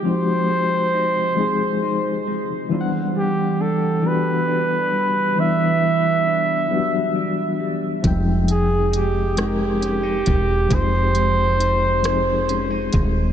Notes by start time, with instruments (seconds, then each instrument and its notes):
Already playing: reed electric piano F3 G#3 C4 D#4 F4, clean electric guitar G#3 D#4
0.02 reed electric piano F3 G#3 C4, clean electric guitar F3
0.06 reed electric piano D#4 F#4, flugelhorn C5
0.14 reed electric piano G4
0.49 clean electric guitar G#3
0.94 clean electric guitar D#4
1.35 reed electric piano F3 G#3 C4, clean electric guitar G#3
1.39 reed electric piano D#4 G#4
1.82 clean electric guitar D#4
2.27 clean electric guitar G#3
2.69 reed electric piano E3 G3 B3, clean electric guitar E3
2.73 reed electric piano D4 F4
2.81 reed electric piano F#5
3.15 clean electric guitar G3, flugelhorn G4
3.60 clean electric guitar D4, flugelhorn A4
4.02 reed electric piano E3 G3 B3, clean electric guitar G3
4.06 reed electric piano D4 F#4, flugelhorn B4
4.48 clean electric guitar D4
4.92 clean electric guitar G3
5.36 reed electric piano E3 G3 B3 D4, clean electric guitar E3
5.40 reed electric piano E4, flugelhorn E5
5.82 clean electric guitar G3
6.26 clean electric guitar D4
6.68 reed electric piano E3 F#3 B3, clean electric guitar G3
6.72 reed electric piano D4 F#4
6.76 reed electric piano G3
7.15 clean electric guitar D4
7.60 clean electric guitar G3
8.02 fretless electric bass F1, reed electric piano F3 G3 C4 D#4, clean electric guitar F3, kick, closed hi-hat
8.07 reed electric piano G#3 G5
8.48 clean electric guitar G#3, flugelhorn G#4, closed hi-hat
8.91 clean electric guitar D#4, closed hi-hat
8.96 flugelhorn G4
9.35 reed electric piano F3 G#3 C4 D#4, clean electric guitar G#3, cross-stick, closed hi-hat
9.41 flugelhorn G4, reed electric piano G#4
9.48 reed electric piano A#4
9.81 clean electric guitar C#4, closed hi-hat
10.03 clean electric guitar D#4
10.26 fretless electric bass E1, clean electric guitar G#3, kick, closed hi-hat
10.69 fretless electric bass F1, reed electric piano F3 G#3 C4, clean electric guitar F3, kick, closed hi-hat
10.73 reed electric piano D#4 G4, flugelhorn C5
11.15 clean electric guitar G#3, closed hi-hat
11.59 clean electric guitar D#4, closed hi-hat
12.03 reed electric piano F3 G#3 C4, clean electric guitar G#3, cross-stick, closed hi-hat
12.07 reed electric piano D#4 G#4
12.49 clean electric guitar C#4, closed hi-hat
12.70 clean electric guitar D#4
12.92 fretless electric bass D#1, clean electric guitar G#3, kick, closed hi-hat